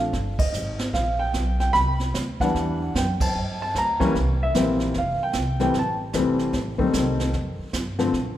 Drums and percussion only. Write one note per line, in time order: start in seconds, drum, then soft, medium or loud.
0.13 brush sweep soft
0.13 kick soft
0.13 snare soft
0.39 kick medium
0.39 ride medium
0.54 hi-hat pedal medium
0.79 snare medium
0.93 brush sweep soft
0.93 kick soft
0.93 snare soft
1.34 kick soft
1.34 snare medium
1.34 hi-hat pedal soft
1.60 snare soft
1.74 brush sweep medium
1.74 kick soft
1.74 snare soft
1.99 snare soft
2.14 kick soft
2.14 snare medium
2.14 hi-hat pedal soft
2.40 kick medium
2.40 snare soft
2.55 brush sweep soft
2.55 kick soft
2.55 snare soft
2.95 kick soft
2.95 snare medium
2.95 hi-hat pedal medium
3.20 kick medium
3.20 ride medium
3.35 brush sweep medium
3.75 kick soft
3.75 snare medium
3.75 hi-hat pedal medium
4.00 kick medium
4.00 snare soft
4.15 brush sweep soft
4.15 kick soft
4.15 snare soft
4.54 kick soft
4.54 snare medium
4.54 hi-hat pedal medium
4.80 snare soft
4.94 brush sweep soft
4.94 kick soft
4.94 snare soft
5.33 kick soft
5.33 snare medium
5.33 hi-hat pedal medium
5.60 snare soft
5.74 brush sweep soft
5.74 kick soft
5.74 snare soft
6.13 kick soft
6.13 snare medium
6.13 hi-hat pedal medium
6.39 snare soft
6.53 brush sweep soft
6.53 kick soft
6.53 snare soft
6.79 kick soft
6.93 kick soft
6.93 snare medium
6.93 hi-hat pedal medium
7.20 snare soft
7.33 brush sweep soft
7.33 kick soft
7.33 snare soft
7.73 kick soft
7.73 snare medium
7.73 hi-hat pedal medium
7.99 snare soft
8.13 brush sweep soft
8.13 kick soft
8.13 snare soft